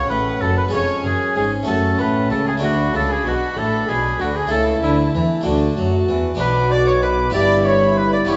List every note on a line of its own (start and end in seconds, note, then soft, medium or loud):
0.00 0.71 C#4 soft
0.00 0.68 F#4 soft
0.00 0.74 F#5 soft
0.09 0.41 A1 soft
0.09 0.41 A2 soft
0.09 0.38 A2 soft
0.09 0.42 B4 medium
0.09 0.42 B4 soft
0.41 0.72 F#1 soft
0.41 0.72 F#2 soft
0.41 0.70 F#2 soft
0.41 0.57 A4 medium
0.41 0.57 A4 soft
0.57 0.73 B4 soft
0.57 0.65 B4 medium
0.69 1.01 G#3 soft
0.69 1.63 C#4 soft
0.69 1.64 G#4 soft
0.73 0.81 F1 soft
0.73 1.01 F2 soft
0.73 0.81 F2 soft
0.73 2.59 C#4 soft
0.73 1.04 C#5 medium
0.73 0.88 C#5 medium
0.73 1.66 G#5 soft
1.04 1.12 F#1 soft
1.04 1.12 F#2 soft
1.04 1.33 F#2 soft
1.04 1.35 G#4 soft
1.04 1.36 G#4 medium
1.36 1.67 G#1 soft
1.36 1.67 G#2 soft
1.36 1.64 G#2 soft
1.36 1.44 G#4 soft
1.36 1.51 G#4 medium
1.63 2.56 A3 soft
1.63 2.58 C#4 soft
1.63 2.59 F#4 soft
1.67 1.98 F#1 soft
1.67 1.98 F#2 soft
1.67 1.96 F#2 soft
1.67 1.76 A4 medium
1.67 1.99 A4 medium
1.67 2.62 A5 soft
1.98 2.30 A1 soft
1.98 2.27 A2 soft
1.98 2.30 A2 soft
1.98 2.07 B4 soft
1.98 2.31 B4 medium
2.30 2.62 C#2 soft
2.30 2.62 C#3 soft
2.30 2.59 C#3 soft
2.30 2.37 A4 soft
2.30 2.46 A4 medium
2.46 2.52 G#4 soft
2.46 2.54 G#4 medium
2.57 2.90 A3 soft
2.57 4.45 D4 soft
2.57 4.46 F#4 soft
2.62 2.94 D2 soft
2.62 2.93 D3 soft
2.62 2.90 D3 soft
2.62 3.56 D4 soft
2.62 2.70 F#4 soft
2.62 2.94 F#4 medium
2.62 4.51 B5 soft
2.93 3.25 C#2 soft
2.93 3.24 C#3 soft
2.93 3.22 C#3 soft
2.93 3.09 A4 medium
2.93 3.13 A4 medium
3.09 3.25 G#4 soft
3.09 3.26 G#4 medium
3.24 3.32 B1 soft
3.24 3.33 B2 soft
3.24 3.54 B2 soft
3.24 3.56 F#4 soft
3.24 3.60 F#4 medium
3.56 3.87 A1 medium
3.56 3.85 A2 soft
3.56 3.87 A2 soft
3.56 4.49 D4 soft
3.56 3.88 A4 medium
3.56 3.90 A4 medium
3.88 4.19 B1 soft
3.88 4.19 B2 soft
3.88 4.17 B2 soft
3.88 4.19 G#4 medium
3.88 4.22 G#4 medium
4.19 4.50 D2 soft
4.19 4.50 D3 soft
4.19 4.48 D3 soft
4.19 4.26 F#4 medium
4.19 4.37 F#4 medium
4.35 4.51 G#4 medium
4.35 4.50 G#4 medium
4.47 4.81 C#2 medium
4.47 4.82 C#3 medium
4.47 5.40 A3 soft
4.47 5.41 E4 soft
4.47 4.82 A4 medium
4.47 4.65 A4 medium
4.51 4.80 C#3 soft
4.51 5.46 E4 soft
4.51 5.44 A5 soft
4.82 5.13 D2 soft
4.82 5.13 D3 soft
4.82 5.11 D3 soft
4.82 5.13 E4 soft
4.82 4.97 E4 medium
5.14 5.22 E2 soft
5.14 5.22 E3 soft
5.14 5.43 E3 soft
5.41 6.04 A3 soft
5.41 6.35 D4 soft
5.41 6.36 F#4 soft
5.45 5.76 D2 medium
5.45 5.76 D3 medium
5.45 5.74 D3 soft
5.45 6.39 F#4 soft
5.45 6.38 A5 soft
5.77 6.08 F#2 soft
5.77 6.08 F#3 soft
5.77 6.05 F#3 soft
6.08 6.39 E2 medium
6.08 6.39 E3 soft
6.08 6.37 E3 soft
6.35 7.30 B2 soft
6.35 7.29 B3 soft
6.35 7.30 D4 soft
6.35 7.31 F#4 soft
6.39 7.30 B1 medium
6.39 7.30 B2 medium
6.39 7.31 F#4 medium
6.39 6.47 B4 medium
6.39 6.73 B4 medium
6.39 7.30 D6 medium
6.70 6.86 D5 medium
6.70 6.87 D5 medium
6.86 6.93 C#5 medium
6.86 7.02 C#5 medium
7.02 7.10 B4 medium
7.02 7.33 B4 medium
7.30 8.24 B3 soft
7.30 8.25 E4 soft
7.30 8.26 G4 soft
7.30 7.67 D5 medium
7.30 7.65 D5 medium
7.34 8.27 G1 medium
7.34 8.25 G2 soft
7.34 8.27 G2 medium
7.34 8.27 E4 medium
7.34 8.28 B5 medium
7.65 7.96 C#5 medium
7.65 7.99 C#5 medium
7.96 8.12 B4 medium
7.96 8.13 B4 medium
8.12 8.19 D5 medium
8.12 8.30 D5 medium
8.25 8.37 G2 medium
8.25 8.37 B3 soft
8.25 8.37 E4 soft
8.25 8.37 G4 soft
8.25 8.37 C#5 medium
8.29 8.37 G1 medium
8.29 8.37 G2 soft
8.29 8.37 E4 medium
8.29 8.37 B5 medium